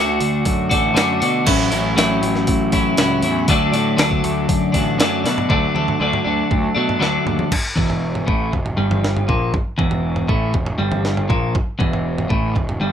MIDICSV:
0, 0, Header, 1, 4, 480
1, 0, Start_track
1, 0, Tempo, 504202
1, 1395, Time_signature, 4, 2, 24, 8
1, 12300, End_track
2, 0, Start_track
2, 0, Title_t, "Clean electric guitar"
2, 0, Program_c, 0, 27
2, 0, Note_on_c, 0, 50, 106
2, 0, Note_on_c, 0, 57, 102
2, 0, Note_on_c, 0, 62, 103
2, 0, Note_on_c, 0, 66, 122
2, 658, Note_off_c, 0, 66, 0
2, 659, Note_off_c, 0, 62, 0
2, 662, Note_on_c, 0, 66, 81
2, 670, Note_on_c, 0, 62, 67
2, 681, Note_off_c, 0, 57, 0
2, 685, Note_on_c, 0, 57, 58
2, 884, Note_off_c, 0, 50, 0
2, 895, Note_on_c, 0, 50, 89
2, 898, Note_off_c, 0, 57, 0
2, 901, Note_off_c, 0, 62, 0
2, 902, Note_on_c, 0, 57, 91
2, 913, Note_on_c, 0, 62, 93
2, 914, Note_off_c, 0, 66, 0
2, 918, Note_on_c, 0, 66, 93
2, 1140, Note_off_c, 0, 66, 0
2, 1144, Note_on_c, 0, 66, 72
2, 1146, Note_off_c, 0, 62, 0
2, 1158, Note_on_c, 0, 62, 64
2, 1162, Note_off_c, 0, 57, 0
2, 1166, Note_on_c, 0, 57, 58
2, 1371, Note_off_c, 0, 50, 0
2, 1380, Note_on_c, 0, 45, 96
2, 1382, Note_off_c, 0, 62, 0
2, 1390, Note_off_c, 0, 57, 0
2, 1394, Note_on_c, 0, 54, 109
2, 1401, Note_off_c, 0, 66, 0
2, 1402, Note_on_c, 0, 61, 123
2, 1405, Note_on_c, 0, 64, 112
2, 1611, Note_off_c, 0, 64, 0
2, 1622, Note_on_c, 0, 64, 78
2, 1624, Note_off_c, 0, 61, 0
2, 1636, Note_on_c, 0, 61, 67
2, 1642, Note_off_c, 0, 54, 0
2, 1646, Note_on_c, 0, 54, 67
2, 1855, Note_off_c, 0, 45, 0
2, 1867, Note_on_c, 0, 45, 116
2, 1869, Note_off_c, 0, 61, 0
2, 1871, Note_off_c, 0, 54, 0
2, 1874, Note_on_c, 0, 54, 110
2, 1875, Note_off_c, 0, 64, 0
2, 1880, Note_on_c, 0, 61, 100
2, 1886, Note_on_c, 0, 64, 104
2, 2579, Note_off_c, 0, 64, 0
2, 2591, Note_off_c, 0, 61, 0
2, 2591, Note_on_c, 0, 64, 77
2, 2603, Note_on_c, 0, 61, 73
2, 2609, Note_off_c, 0, 54, 0
2, 2613, Note_on_c, 0, 54, 72
2, 2824, Note_off_c, 0, 45, 0
2, 2835, Note_on_c, 0, 45, 82
2, 2838, Note_off_c, 0, 54, 0
2, 2840, Note_off_c, 0, 61, 0
2, 2842, Note_on_c, 0, 54, 81
2, 2849, Note_off_c, 0, 64, 0
2, 2852, Note_on_c, 0, 61, 90
2, 2860, Note_on_c, 0, 64, 88
2, 3064, Note_off_c, 0, 64, 0
2, 3075, Note_on_c, 0, 64, 69
2, 3076, Note_off_c, 0, 61, 0
2, 3088, Note_on_c, 0, 61, 64
2, 3091, Note_off_c, 0, 54, 0
2, 3095, Note_on_c, 0, 54, 62
2, 3302, Note_off_c, 0, 45, 0
2, 3302, Note_off_c, 0, 64, 0
2, 3308, Note_off_c, 0, 61, 0
2, 3317, Note_on_c, 0, 50, 96
2, 3322, Note_off_c, 0, 54, 0
2, 3326, Note_on_c, 0, 54, 111
2, 3331, Note_on_c, 0, 57, 115
2, 3343, Note_on_c, 0, 62, 113
2, 3532, Note_off_c, 0, 62, 0
2, 3543, Note_on_c, 0, 62, 80
2, 3548, Note_off_c, 0, 57, 0
2, 3558, Note_off_c, 0, 54, 0
2, 3559, Note_on_c, 0, 57, 75
2, 3569, Note_on_c, 0, 54, 66
2, 3766, Note_off_c, 0, 50, 0
2, 3777, Note_off_c, 0, 54, 0
2, 3777, Note_on_c, 0, 50, 108
2, 3786, Note_off_c, 0, 57, 0
2, 3788, Note_on_c, 0, 54, 100
2, 3792, Note_off_c, 0, 62, 0
2, 3798, Note_on_c, 0, 57, 99
2, 3803, Note_on_c, 0, 62, 117
2, 4484, Note_off_c, 0, 62, 0
2, 4496, Note_on_c, 0, 62, 73
2, 4502, Note_off_c, 0, 57, 0
2, 4509, Note_off_c, 0, 54, 0
2, 4514, Note_on_c, 0, 57, 66
2, 4521, Note_on_c, 0, 54, 62
2, 4734, Note_off_c, 0, 50, 0
2, 4743, Note_off_c, 0, 54, 0
2, 4745, Note_on_c, 0, 50, 78
2, 4750, Note_off_c, 0, 57, 0
2, 4755, Note_on_c, 0, 54, 84
2, 4759, Note_off_c, 0, 62, 0
2, 4762, Note_on_c, 0, 57, 92
2, 4771, Note_on_c, 0, 62, 91
2, 4975, Note_off_c, 0, 62, 0
2, 4987, Note_on_c, 0, 62, 65
2, 4990, Note_off_c, 0, 57, 0
2, 4995, Note_off_c, 0, 54, 0
2, 5001, Note_on_c, 0, 57, 64
2, 5007, Note_on_c, 0, 54, 58
2, 5214, Note_off_c, 0, 50, 0
2, 5218, Note_off_c, 0, 62, 0
2, 5225, Note_off_c, 0, 57, 0
2, 5225, Note_on_c, 0, 50, 91
2, 5227, Note_off_c, 0, 54, 0
2, 5238, Note_on_c, 0, 54, 85
2, 5241, Note_on_c, 0, 57, 111
2, 5251, Note_on_c, 0, 62, 109
2, 5460, Note_off_c, 0, 62, 0
2, 5471, Note_off_c, 0, 57, 0
2, 5471, Note_on_c, 0, 62, 81
2, 5482, Note_on_c, 0, 57, 69
2, 5484, Note_off_c, 0, 54, 0
2, 5496, Note_on_c, 0, 54, 61
2, 5696, Note_off_c, 0, 50, 0
2, 5708, Note_on_c, 0, 50, 73
2, 5709, Note_off_c, 0, 54, 0
2, 5716, Note_off_c, 0, 57, 0
2, 5720, Note_on_c, 0, 54, 74
2, 5722, Note_off_c, 0, 62, 0
2, 5728, Note_on_c, 0, 57, 81
2, 5733, Note_on_c, 0, 62, 87
2, 5934, Note_off_c, 0, 62, 0
2, 5943, Note_off_c, 0, 57, 0
2, 5946, Note_on_c, 0, 62, 77
2, 5955, Note_on_c, 0, 57, 61
2, 5957, Note_off_c, 0, 54, 0
2, 5968, Note_on_c, 0, 54, 57
2, 6192, Note_off_c, 0, 50, 0
2, 6411, Note_off_c, 0, 62, 0
2, 6422, Note_on_c, 0, 62, 72
2, 6423, Note_off_c, 0, 57, 0
2, 6433, Note_off_c, 0, 54, 0
2, 6434, Note_on_c, 0, 57, 65
2, 6445, Note_on_c, 0, 54, 64
2, 6654, Note_off_c, 0, 54, 0
2, 6656, Note_on_c, 0, 50, 95
2, 6664, Note_off_c, 0, 57, 0
2, 6666, Note_on_c, 0, 54, 91
2, 6670, Note_off_c, 0, 62, 0
2, 6676, Note_on_c, 0, 57, 96
2, 6681, Note_on_c, 0, 62, 89
2, 7132, Note_off_c, 0, 50, 0
2, 7137, Note_off_c, 0, 54, 0
2, 7142, Note_off_c, 0, 57, 0
2, 7145, Note_off_c, 0, 62, 0
2, 7384, Note_on_c, 0, 40, 93
2, 7863, Note_off_c, 0, 40, 0
2, 7869, Note_on_c, 0, 45, 86
2, 8106, Note_off_c, 0, 45, 0
2, 8115, Note_on_c, 0, 40, 67
2, 8307, Note_off_c, 0, 40, 0
2, 8351, Note_on_c, 0, 43, 96
2, 8825, Note_off_c, 0, 43, 0
2, 8835, Note_on_c, 0, 46, 86
2, 9067, Note_off_c, 0, 46, 0
2, 9308, Note_on_c, 0, 40, 95
2, 9783, Note_off_c, 0, 40, 0
2, 9790, Note_on_c, 0, 45, 95
2, 10024, Note_off_c, 0, 45, 0
2, 10033, Note_on_c, 0, 40, 74
2, 10224, Note_off_c, 0, 40, 0
2, 10266, Note_on_c, 0, 43, 95
2, 10741, Note_off_c, 0, 43, 0
2, 10749, Note_on_c, 0, 46, 93
2, 10982, Note_off_c, 0, 46, 0
2, 11222, Note_on_c, 0, 40, 105
2, 11698, Note_off_c, 0, 40, 0
2, 11705, Note_on_c, 0, 45, 89
2, 11939, Note_off_c, 0, 45, 0
2, 11947, Note_on_c, 0, 40, 79
2, 12139, Note_off_c, 0, 40, 0
2, 12194, Note_on_c, 0, 43, 104
2, 12300, Note_off_c, 0, 43, 0
2, 12300, End_track
3, 0, Start_track
3, 0, Title_t, "Picked electric bass"
3, 0, Program_c, 1, 34
3, 0, Note_on_c, 1, 38, 94
3, 183, Note_off_c, 1, 38, 0
3, 198, Note_on_c, 1, 38, 97
3, 421, Note_off_c, 1, 38, 0
3, 440, Note_on_c, 1, 42, 89
3, 662, Note_off_c, 1, 42, 0
3, 678, Note_on_c, 1, 33, 85
3, 902, Note_off_c, 1, 33, 0
3, 921, Note_on_c, 1, 42, 81
3, 1144, Note_off_c, 1, 42, 0
3, 1161, Note_on_c, 1, 47, 87
3, 1384, Note_off_c, 1, 47, 0
3, 1399, Note_on_c, 1, 33, 106
3, 1623, Note_off_c, 1, 33, 0
3, 1638, Note_on_c, 1, 33, 96
3, 1863, Note_off_c, 1, 33, 0
3, 1876, Note_on_c, 1, 33, 96
3, 2102, Note_off_c, 1, 33, 0
3, 2112, Note_on_c, 1, 33, 86
3, 2340, Note_off_c, 1, 33, 0
3, 2358, Note_on_c, 1, 33, 87
3, 2583, Note_off_c, 1, 33, 0
3, 2600, Note_on_c, 1, 33, 100
3, 2824, Note_off_c, 1, 33, 0
3, 2833, Note_on_c, 1, 37, 91
3, 3061, Note_off_c, 1, 37, 0
3, 3068, Note_on_c, 1, 40, 96
3, 3298, Note_off_c, 1, 40, 0
3, 3318, Note_on_c, 1, 38, 102
3, 3543, Note_off_c, 1, 38, 0
3, 3549, Note_on_c, 1, 45, 101
3, 3779, Note_off_c, 1, 45, 0
3, 3790, Note_on_c, 1, 38, 99
3, 4019, Note_off_c, 1, 38, 0
3, 4035, Note_on_c, 1, 38, 89
3, 4262, Note_off_c, 1, 38, 0
3, 4274, Note_on_c, 1, 42, 74
3, 4501, Note_off_c, 1, 42, 0
3, 4512, Note_on_c, 1, 33, 94
3, 4740, Note_off_c, 1, 33, 0
3, 4754, Note_on_c, 1, 42, 73
3, 4981, Note_off_c, 1, 42, 0
3, 4994, Note_on_c, 1, 47, 92
3, 5222, Note_off_c, 1, 47, 0
3, 5233, Note_on_c, 1, 38, 89
3, 5385, Note_off_c, 1, 38, 0
3, 5474, Note_on_c, 1, 38, 95
3, 5625, Note_off_c, 1, 38, 0
3, 5714, Note_on_c, 1, 38, 97
3, 5866, Note_off_c, 1, 38, 0
3, 5959, Note_on_c, 1, 38, 77
3, 6109, Note_off_c, 1, 38, 0
3, 6200, Note_on_c, 1, 38, 72
3, 6349, Note_off_c, 1, 38, 0
3, 6439, Note_on_c, 1, 47, 85
3, 6589, Note_off_c, 1, 47, 0
3, 6678, Note_on_c, 1, 38, 74
3, 6828, Note_off_c, 1, 38, 0
3, 6915, Note_on_c, 1, 39, 86
3, 7066, Note_off_c, 1, 39, 0
3, 7400, Note_on_c, 1, 28, 96
3, 7844, Note_off_c, 1, 28, 0
3, 7883, Note_on_c, 1, 33, 86
3, 8103, Note_off_c, 1, 33, 0
3, 8125, Note_on_c, 1, 28, 66
3, 8344, Note_off_c, 1, 28, 0
3, 8361, Note_on_c, 1, 31, 90
3, 8804, Note_off_c, 1, 31, 0
3, 8842, Note_on_c, 1, 34, 87
3, 9062, Note_off_c, 1, 34, 0
3, 9321, Note_on_c, 1, 28, 102
3, 9763, Note_off_c, 1, 28, 0
3, 9799, Note_on_c, 1, 33, 84
3, 10019, Note_off_c, 1, 33, 0
3, 10034, Note_on_c, 1, 28, 69
3, 10256, Note_off_c, 1, 28, 0
3, 10276, Note_on_c, 1, 31, 90
3, 10719, Note_off_c, 1, 31, 0
3, 10757, Note_on_c, 1, 34, 94
3, 10976, Note_off_c, 1, 34, 0
3, 11237, Note_on_c, 1, 28, 103
3, 11679, Note_off_c, 1, 28, 0
3, 11715, Note_on_c, 1, 33, 86
3, 11935, Note_off_c, 1, 33, 0
3, 11953, Note_on_c, 1, 28, 67
3, 12174, Note_off_c, 1, 28, 0
3, 12187, Note_on_c, 1, 31, 96
3, 12300, Note_off_c, 1, 31, 0
3, 12300, End_track
4, 0, Start_track
4, 0, Title_t, "Drums"
4, 196, Note_on_c, 9, 46, 71
4, 291, Note_off_c, 9, 46, 0
4, 432, Note_on_c, 9, 46, 74
4, 437, Note_on_c, 9, 36, 98
4, 527, Note_off_c, 9, 46, 0
4, 532, Note_off_c, 9, 36, 0
4, 677, Note_on_c, 9, 36, 91
4, 678, Note_on_c, 9, 46, 75
4, 772, Note_off_c, 9, 36, 0
4, 773, Note_off_c, 9, 46, 0
4, 920, Note_on_c, 9, 46, 77
4, 927, Note_on_c, 9, 38, 105
4, 1015, Note_off_c, 9, 46, 0
4, 1022, Note_off_c, 9, 38, 0
4, 1160, Note_on_c, 9, 46, 72
4, 1255, Note_off_c, 9, 46, 0
4, 1395, Note_on_c, 9, 49, 121
4, 1398, Note_on_c, 9, 36, 123
4, 1491, Note_off_c, 9, 49, 0
4, 1493, Note_off_c, 9, 36, 0
4, 1635, Note_on_c, 9, 46, 64
4, 1730, Note_off_c, 9, 46, 0
4, 1882, Note_on_c, 9, 46, 84
4, 1890, Note_on_c, 9, 38, 112
4, 1978, Note_off_c, 9, 46, 0
4, 1985, Note_off_c, 9, 38, 0
4, 2121, Note_on_c, 9, 46, 64
4, 2216, Note_off_c, 9, 46, 0
4, 2243, Note_on_c, 9, 38, 36
4, 2338, Note_off_c, 9, 38, 0
4, 2354, Note_on_c, 9, 46, 77
4, 2358, Note_on_c, 9, 36, 99
4, 2449, Note_off_c, 9, 46, 0
4, 2453, Note_off_c, 9, 36, 0
4, 2592, Note_on_c, 9, 46, 62
4, 2597, Note_on_c, 9, 36, 90
4, 2688, Note_off_c, 9, 46, 0
4, 2692, Note_off_c, 9, 36, 0
4, 2832, Note_on_c, 9, 46, 79
4, 2840, Note_on_c, 9, 38, 111
4, 2927, Note_off_c, 9, 46, 0
4, 2935, Note_off_c, 9, 38, 0
4, 3070, Note_on_c, 9, 46, 64
4, 3165, Note_off_c, 9, 46, 0
4, 3312, Note_on_c, 9, 46, 91
4, 3315, Note_on_c, 9, 36, 127
4, 3408, Note_off_c, 9, 46, 0
4, 3410, Note_off_c, 9, 36, 0
4, 3556, Note_on_c, 9, 46, 62
4, 3651, Note_off_c, 9, 46, 0
4, 3793, Note_on_c, 9, 46, 87
4, 3801, Note_on_c, 9, 38, 114
4, 3889, Note_off_c, 9, 46, 0
4, 3896, Note_off_c, 9, 38, 0
4, 3914, Note_on_c, 9, 36, 79
4, 4010, Note_off_c, 9, 36, 0
4, 4036, Note_on_c, 9, 46, 65
4, 4131, Note_off_c, 9, 46, 0
4, 4274, Note_on_c, 9, 36, 101
4, 4275, Note_on_c, 9, 46, 74
4, 4369, Note_off_c, 9, 36, 0
4, 4370, Note_off_c, 9, 46, 0
4, 4513, Note_on_c, 9, 36, 84
4, 4514, Note_on_c, 9, 46, 69
4, 4608, Note_off_c, 9, 36, 0
4, 4609, Note_off_c, 9, 46, 0
4, 4757, Note_on_c, 9, 46, 84
4, 4765, Note_on_c, 9, 38, 114
4, 4852, Note_off_c, 9, 46, 0
4, 4860, Note_off_c, 9, 38, 0
4, 5004, Note_on_c, 9, 46, 64
4, 5011, Note_on_c, 9, 38, 71
4, 5099, Note_off_c, 9, 46, 0
4, 5107, Note_off_c, 9, 38, 0
4, 5121, Note_on_c, 9, 43, 93
4, 5217, Note_off_c, 9, 43, 0
4, 5235, Note_on_c, 9, 36, 117
4, 5240, Note_on_c, 9, 43, 91
4, 5330, Note_off_c, 9, 36, 0
4, 5335, Note_off_c, 9, 43, 0
4, 5482, Note_on_c, 9, 47, 83
4, 5577, Note_off_c, 9, 47, 0
4, 5600, Note_on_c, 9, 43, 76
4, 5695, Note_off_c, 9, 43, 0
4, 5840, Note_on_c, 9, 43, 88
4, 5935, Note_off_c, 9, 43, 0
4, 6197, Note_on_c, 9, 36, 96
4, 6200, Note_on_c, 9, 43, 80
4, 6292, Note_off_c, 9, 36, 0
4, 6295, Note_off_c, 9, 43, 0
4, 6561, Note_on_c, 9, 43, 83
4, 6656, Note_off_c, 9, 43, 0
4, 6688, Note_on_c, 9, 38, 78
4, 6783, Note_off_c, 9, 38, 0
4, 6918, Note_on_c, 9, 43, 86
4, 7013, Note_off_c, 9, 43, 0
4, 7035, Note_on_c, 9, 47, 82
4, 7130, Note_off_c, 9, 47, 0
4, 7158, Note_on_c, 9, 36, 105
4, 7158, Note_on_c, 9, 43, 81
4, 7158, Note_on_c, 9, 57, 111
4, 7253, Note_off_c, 9, 36, 0
4, 7253, Note_off_c, 9, 43, 0
4, 7253, Note_off_c, 9, 57, 0
4, 7399, Note_on_c, 9, 36, 98
4, 7402, Note_on_c, 9, 43, 80
4, 7495, Note_off_c, 9, 36, 0
4, 7497, Note_off_c, 9, 43, 0
4, 7519, Note_on_c, 9, 43, 81
4, 7614, Note_off_c, 9, 43, 0
4, 7761, Note_on_c, 9, 43, 76
4, 7856, Note_off_c, 9, 43, 0
4, 7882, Note_on_c, 9, 36, 112
4, 7977, Note_off_c, 9, 36, 0
4, 8122, Note_on_c, 9, 36, 74
4, 8123, Note_on_c, 9, 43, 78
4, 8217, Note_off_c, 9, 36, 0
4, 8218, Note_off_c, 9, 43, 0
4, 8242, Note_on_c, 9, 43, 77
4, 8337, Note_off_c, 9, 43, 0
4, 8483, Note_on_c, 9, 43, 91
4, 8483, Note_on_c, 9, 47, 74
4, 8578, Note_off_c, 9, 43, 0
4, 8578, Note_off_c, 9, 47, 0
4, 8610, Note_on_c, 9, 38, 70
4, 8706, Note_off_c, 9, 38, 0
4, 8726, Note_on_c, 9, 43, 80
4, 8821, Note_off_c, 9, 43, 0
4, 8842, Note_on_c, 9, 36, 105
4, 8843, Note_on_c, 9, 43, 83
4, 8937, Note_off_c, 9, 36, 0
4, 8939, Note_off_c, 9, 43, 0
4, 9080, Note_on_c, 9, 36, 112
4, 9080, Note_on_c, 9, 43, 88
4, 9175, Note_off_c, 9, 36, 0
4, 9175, Note_off_c, 9, 43, 0
4, 9317, Note_on_c, 9, 43, 70
4, 9320, Note_on_c, 9, 36, 99
4, 9412, Note_off_c, 9, 43, 0
4, 9415, Note_off_c, 9, 36, 0
4, 9434, Note_on_c, 9, 43, 83
4, 9529, Note_off_c, 9, 43, 0
4, 9672, Note_on_c, 9, 43, 83
4, 9768, Note_off_c, 9, 43, 0
4, 9797, Note_on_c, 9, 36, 108
4, 9892, Note_off_c, 9, 36, 0
4, 10032, Note_on_c, 9, 43, 73
4, 10035, Note_on_c, 9, 36, 83
4, 10127, Note_off_c, 9, 43, 0
4, 10130, Note_off_c, 9, 36, 0
4, 10152, Note_on_c, 9, 43, 86
4, 10248, Note_off_c, 9, 43, 0
4, 10392, Note_on_c, 9, 43, 81
4, 10392, Note_on_c, 9, 47, 83
4, 10487, Note_off_c, 9, 43, 0
4, 10487, Note_off_c, 9, 47, 0
4, 10518, Note_on_c, 9, 38, 62
4, 10614, Note_off_c, 9, 38, 0
4, 10637, Note_on_c, 9, 43, 81
4, 10732, Note_off_c, 9, 43, 0
4, 10756, Note_on_c, 9, 36, 103
4, 10760, Note_on_c, 9, 43, 87
4, 10851, Note_off_c, 9, 36, 0
4, 10855, Note_off_c, 9, 43, 0
4, 10996, Note_on_c, 9, 36, 115
4, 11000, Note_on_c, 9, 43, 94
4, 11091, Note_off_c, 9, 36, 0
4, 11096, Note_off_c, 9, 43, 0
4, 11235, Note_on_c, 9, 36, 103
4, 11240, Note_on_c, 9, 43, 83
4, 11330, Note_off_c, 9, 36, 0
4, 11335, Note_off_c, 9, 43, 0
4, 11361, Note_on_c, 9, 43, 72
4, 11456, Note_off_c, 9, 43, 0
4, 11599, Note_on_c, 9, 43, 81
4, 11694, Note_off_c, 9, 43, 0
4, 11713, Note_on_c, 9, 36, 101
4, 11808, Note_off_c, 9, 36, 0
4, 11954, Note_on_c, 9, 36, 77
4, 11959, Note_on_c, 9, 43, 66
4, 12049, Note_off_c, 9, 36, 0
4, 12054, Note_off_c, 9, 43, 0
4, 12080, Note_on_c, 9, 43, 80
4, 12175, Note_off_c, 9, 43, 0
4, 12300, End_track
0, 0, End_of_file